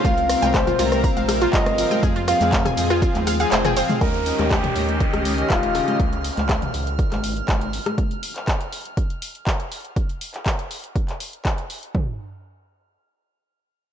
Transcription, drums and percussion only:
0.05 kick, closed hi-hat, shaker
0.18 closed hi-hat
0.29 cross-stick, open hi-hat, ride, shaker
0.42 clap, closed hi-hat, high conga, shaker
0.54 kick, cross-stick, clap, closed hi-hat, shaker
0.67 closed hi-hat, mid tom, shaker
0.79 open hi-hat, ride, high conga, shaker
0.92 cross-stick, closed hi-hat, shaker
1.04 kick, closed hi-hat, shaker
1.17 closed hi-hat, high conga
1.29 cross-stick, open hi-hat, ride, shaker
1.42 closed hi-hat, shaker
1.53 kick, clap, closed hi-hat, high conga, shaker
1.66 cross-stick, closed hi-hat
1.78 open hi-hat, ride, shaker
1.91 cross-stick, closed hi-hat, high conga, shaker
2.03 kick, closed hi-hat, shaker
2.16 closed hi-hat
2.28 cross-stick, open hi-hat, ride, shaker
2.41 clap, closed hi-hat, high conga, shaker
2.53 kick, clap, closed hi-hat, shaker
2.65 cross-stick, closed hi-hat, mid tom, shaker
2.77 open hi-hat, ride, shaker
2.90 cross-stick, closed hi-hat, shaker
3.02 kick, closed hi-hat, shaker
3.15 clap, closed hi-hat, high conga, shaker
3.27 cross-stick, open hi-hat, ride, shaker
3.40 closed hi-hat, shaker
3.52 clap, closed hi-hat, high conga, shaker
3.65 cross-stick, closed hi-hat, mid tom, shaker
3.77 open hi-hat, ride, shaker
3.89 closed hi-hat, mid tom, high conga, shaker
4.01 kick, closed hi-hat
4.14 closed hi-hat
4.26 open hi-hat
4.39 cross-stick, clap, closed hi-hat, high conga
4.51 kick, clap, closed hi-hat
4.64 closed hi-hat, mid tom
4.76 open hi-hat, high conga
4.89 closed hi-hat
5.00 kick, closed hi-hat
5.13 cross-stick, closed hi-hat, high conga
5.25 open hi-hat
5.38 closed hi-hat
5.50 kick, clap, closed hi-hat, high conga
5.63 closed hi-hat
5.75 cross-stick, open hi-hat
5.88 closed hi-hat, high conga
6.00 kick, closed hi-hat
6.13 closed hi-hat
6.24 open hi-hat
6.37 clap, closed hi-hat, high conga
6.49 kick, cross-stick, clap, closed hi-hat
6.62 closed hi-hat, mid tom
6.74 open hi-hat
6.87 closed hi-hat
6.99 kick, closed hi-hat
7.12 cross-stick, clap, closed hi-hat, high conga
7.24 open hi-hat
7.37 closed hi-hat
7.48 kick, clap, closed hi-hat, high conga
7.61 closed hi-hat
7.73 open hi-hat
7.86 cross-stick, closed hi-hat, high conga
7.98 kick, closed hi-hat
8.11 closed hi-hat
8.23 open hi-hat
8.36 clap, closed hi-hat
8.48 kick, clap, closed hi-hat
8.61 closed hi-hat
8.72 open hi-hat
8.85 closed hi-hat
8.97 kick, closed hi-hat
9.10 closed hi-hat
9.22 open hi-hat
9.35 closed hi-hat
9.47 kick, clap, closed hi-hat
9.60 closed hi-hat
9.72 open hi-hat
9.85 closed hi-hat
9.96 kick, closed hi-hat
10.09 closed hi-hat
10.21 open hi-hat
10.34 clap, closed hi-hat
10.46 kick, clap, closed hi-hat
10.59 closed hi-hat
10.71 open hi-hat
10.84 closed hi-hat
10.96 kick, closed hi-hat
11.09 clap, closed hi-hat
11.20 open hi-hat
11.33 closed hi-hat
11.45 kick, clap, closed hi-hat
11.58 closed hi-hat
11.70 open hi-hat
11.83 closed hi-hat
11.95 kick, floor tom

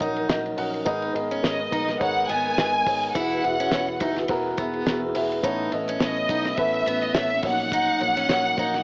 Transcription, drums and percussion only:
0.00 kick, ride
0.16 ride
0.29 snare, ride
0.46 ride
0.58 open hi-hat, ride
0.74 ride
0.86 kick, hi-hat pedal, ride
1.02 ride
1.15 ride
1.32 ride
1.44 snare, ride
1.72 kick, ride
1.88 snare, ride
2.01 kick, ride
2.29 ride
2.46 ride
2.58 snare, ride
2.86 kick, open hi-hat, ride
3.03 ride
3.15 kick, hi-hat pedal, ride
3.44 ride
3.60 ride
3.71 snare, ride
3.88 ride
4.00 kick, ride
4.16 snare, ride
4.28 kick, ride
4.57 kick, ride
4.73 ride
4.86 snare, ride
5.15 open hi-hat, ride
5.32 ride
5.43 kick, hi-hat pedal, ride
5.72 ride
5.88 ride
6.00 snare, ride
6.17 ride
6.29 kick, ride
6.45 snare, ride
6.57 kick, ride
6.74 ride
6.86 ride
7.02 ride
7.14 snare, ride
7.30 ride
7.43 kick, open hi-hat, ride
7.60 ride
7.72 kick, hi-hat pedal, ride
7.87 ride
8.01 ride
8.17 ride
8.29 snare, ride
8.46 ride
8.57 kick, ride
8.74 snare, ride

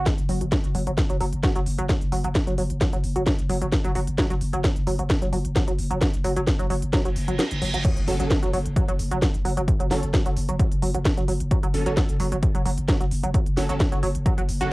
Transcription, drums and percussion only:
0.06 kick, snare, closed hi-hat
0.18 closed hi-hat
0.29 open hi-hat
0.41 closed hi-hat
0.52 kick, snare, closed hi-hat
0.64 closed hi-hat
0.75 open hi-hat
0.87 closed hi-hat
0.98 kick, snare, closed hi-hat
1.10 closed hi-hat
1.21 open hi-hat
1.33 closed hi-hat
1.43 kick, snare, closed hi-hat
1.56 closed hi-hat
1.66 open hi-hat
1.78 closed hi-hat
1.89 kick, snare, closed hi-hat
2.01 closed hi-hat
2.12 open hi-hat
2.24 closed hi-hat
2.35 kick, snare, closed hi-hat
2.47 closed hi-hat
2.58 open hi-hat
2.70 closed hi-hat
2.81 kick, snare, closed hi-hat
2.93 closed hi-hat
3.04 open hi-hat
3.16 closed hi-hat
3.27 kick, snare, closed hi-hat
3.39 closed hi-hat
3.49 open hi-hat
3.62 closed hi-hat
3.72 kick, snare, closed hi-hat
3.85 closed hi-hat
3.95 open hi-hat
4.07 closed hi-hat
4.18 kick, snare, closed hi-hat
4.30 closed hi-hat
4.41 open hi-hat
4.53 closed hi-hat
4.64 kick, snare, closed hi-hat
4.76 closed hi-hat
4.87 open hi-hat
4.99 closed hi-hat
5.10 kick, snare, closed hi-hat
5.22 closed hi-hat
5.33 open hi-hat
5.45 closed hi-hat
5.56 kick, snare, closed hi-hat
5.68 closed hi-hat
5.79 open hi-hat
5.91 closed hi-hat
6.01 kick, snare, closed hi-hat
6.14 closed hi-hat
6.24 open hi-hat
6.36 closed hi-hat
6.47 kick, snare, closed hi-hat
6.59 closed hi-hat
6.70 open hi-hat
6.82 closed hi-hat
6.93 kick, snare, closed hi-hat
7.05 closed hi-hat
7.16 open hi-hat
7.28 closed hi-hat
7.39 snare, closed hi-hat
7.51 closed hi-hat
7.62 open hi-hat
7.74 closed hi-hat
7.85 kick, closed hi-hat, crash
7.97 closed hi-hat
8.08 open hi-hat
8.20 closed hi-hat
8.31 kick, snare, closed hi-hat
8.43 closed hi-hat
8.53 open hi-hat
8.66 closed hi-hat
8.76 kick, closed hi-hat
8.88 closed hi-hat
8.99 open hi-hat
9.11 closed hi-hat
9.22 kick, snare, closed hi-hat
9.34 closed hi-hat
9.45 open hi-hat
9.57 closed hi-hat
9.68 kick, closed hi-hat
9.80 closed hi-hat
9.91 snare, open hi-hat
10.03 closed hi-hat
10.14 kick, snare, closed hi-hat
10.26 closed hi-hat
10.37 open hi-hat
10.49 closed hi-hat
10.59 kick, closed hi-hat
10.72 closed hi-hat
10.82 open hi-hat
10.94 closed hi-hat
11.05 kick, snare, closed hi-hat
11.17 closed hi-hat
11.28 open hi-hat
11.40 closed hi-hat
11.51 kick, closed hi-hat
11.63 closed hi-hat
11.74 open hi-hat
11.86 closed hi-hat
11.97 kick, snare, closed hi-hat
12.09 closed hi-hat
12.20 open hi-hat
12.32 closed hi-hat
12.43 kick, closed hi-hat
12.55 closed hi-hat
12.66 open hi-hat
12.78 closed hi-hat
12.89 kick, snare, closed hi-hat
13.01 closed hi-hat
13.11 open hi-hat
13.24 closed hi-hat
13.34 kick, closed hi-hat
13.46 closed hi-hat
13.57 snare, open hi-hat
13.69 closed hi-hat
13.80 kick, snare, closed hi-hat
13.92 closed hi-hat
14.03 open hi-hat
14.15 closed hi-hat
14.26 kick, closed hi-hat
14.38 closed hi-hat
14.49 open hi-hat
14.61 closed hi-hat

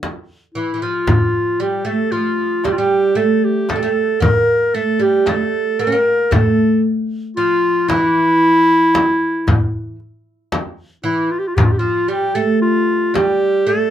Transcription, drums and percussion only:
0.03 darbuka tek, frame drum
0.55 darbuka ka
1.07 darbuka dum, frame drum
1.33 darbuka ka
2.13 darbuka ka
2.38 darbuka ka
2.64 darbuka tek, frame drum
3.69 darbuka tek, frame drum
4.21 darbuka dum, frame drum
5.26 darbuka tek, frame drum
6.32 frame drum, darbuka dum
6.58 darbuka ka
7.38 darbuka ka
7.64 darbuka ka
7.90 darbuka tek, frame drum
8.43 darbuka ka
8.94 darbuka tek, frame drum
9.47 darbuka dum, frame drum
10.00 darbuka ka
10.52 darbuka tek, frame drum
11.57 darbuka dum, frame drum
12.63 darbuka ka
12.89 darbuka ka
13.15 darbuka tek, frame drum
13.69 darbuka ka

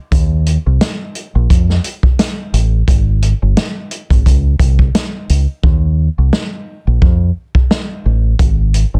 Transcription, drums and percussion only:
0.12 kick, closed hi-hat
0.46 closed hi-hat
0.81 snare, closed hi-hat
1.15 closed hi-hat
1.50 kick, closed hi-hat
1.70 snare
1.84 closed hi-hat
2.03 kick
2.19 snare, closed hi-hat
2.54 closed hi-hat
2.88 kick, closed hi-hat
3.22 closed hi-hat
3.57 snare, closed hi-hat
3.91 closed hi-hat
4.10 kick, closed hi-hat
4.26 kick, closed hi-hat
4.59 kick, closed hi-hat
4.79 kick
4.95 snare, closed hi-hat
5.29 closed hi-hat
5.63 kick
6.33 snare
7.02 kick
7.55 kick
7.71 snare
8.39 kick, closed hi-hat
8.74 closed hi-hat

